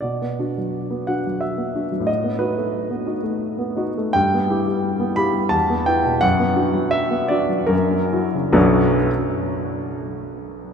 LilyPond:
<<
  \new Staff \with { instrumentName = "Grand piano" } { \time 3/4 \key b \minor \tempo 4 = 85 d''4. fis''8 e''4 | dis''8 b'2~ b'8 | g''4. b''8 a''8 g''8 | fis''4 e''8 d''8 ais'4 |
<b,, fis, fis b d' fis' d''>8 r2 r8 | }
  \new Staff \with { instrumentName = "Grand piano" } { \time 3/4 \key b \minor b,16 b16 <d' fis'>16 fis8 b16 <d' fis'>16 fis8 b16 <d' fis'>16 fis16 | a,16 b16 <dis' fis'>16 a8 b16 <dis' fis'>16 a8 b16 <dis' fis'>16 a16 | g,16 b16 <e' g'>16 g8 b16 <e' g'>16 g16 e,16 b16 <e' b'>16 b,16 | fis,16 b16 <d' fis'>16 fis8 b16 <d' fis'>16 fis16 fis,16 cis'16 <e' fis'>16 cis16 |
r2. | }
>>